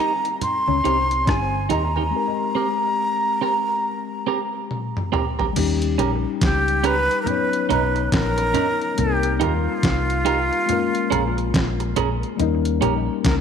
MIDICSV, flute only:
0, 0, Header, 1, 2, 480
1, 0, Start_track
1, 0, Tempo, 855920
1, 1196, Time_signature, 4, 2, 24, 8
1, 7519, End_track
2, 0, Start_track
2, 0, Title_t, "Flute"
2, 0, Program_c, 0, 73
2, 0, Note_on_c, 0, 82, 98
2, 215, Note_off_c, 0, 82, 0
2, 237, Note_on_c, 0, 84, 105
2, 722, Note_on_c, 0, 80, 109
2, 730, Note_off_c, 0, 84, 0
2, 967, Note_on_c, 0, 82, 90
2, 975, Note_off_c, 0, 80, 0
2, 2883, Note_off_c, 0, 82, 0
2, 3603, Note_on_c, 0, 67, 102
2, 3844, Note_on_c, 0, 71, 122
2, 3852, Note_off_c, 0, 67, 0
2, 4046, Note_off_c, 0, 71, 0
2, 4050, Note_on_c, 0, 70, 76
2, 4081, Note_on_c, 0, 71, 116
2, 4089, Note_off_c, 0, 70, 0
2, 4316, Note_off_c, 0, 71, 0
2, 4320, Note_on_c, 0, 71, 106
2, 4541, Note_off_c, 0, 71, 0
2, 4564, Note_on_c, 0, 70, 117
2, 5044, Note_on_c, 0, 67, 105
2, 5052, Note_off_c, 0, 70, 0
2, 5289, Note_on_c, 0, 65, 99
2, 5297, Note_off_c, 0, 67, 0
2, 6718, Note_off_c, 0, 65, 0
2, 7432, Note_on_c, 0, 70, 96
2, 7486, Note_off_c, 0, 70, 0
2, 7519, End_track
0, 0, End_of_file